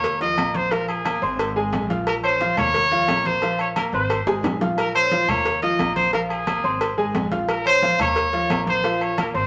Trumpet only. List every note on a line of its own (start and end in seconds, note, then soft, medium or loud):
0.00 0.19 C#5 loud
0.22 0.57 D#5 loud
0.56 0.73 C5 loud
0.72 0.88 A#4 loud
0.89 1.52 G#4 medium
2.08 2.15 A#4 loud
2.24 2.56 C5 loud
2.59 3.28 C#5 loud
3.26 3.60 C5 loud
3.61 3.68 C#5 medium
3.77 3.85 A#4 medium
3.94 4.41 C5 medium
4.78 4.94 A#4 loud
4.95 5.31 C5 loud
5.29 5.62 C#5 loud
5.63 5.94 D#5 loud
5.96 6.12 C5 loud
6.14 6.21 A#4 loud
6.30 6.94 G#4 medium
7.50 7.65 A#4 loud
7.67 7.98 C5 loud
8.01 8.64 C#5 loud
8.69 9.04 C5 loud
9.03 9.19 C#5 loud
9.20 9.27 A#4 medium
9.37 9.47 C5 medium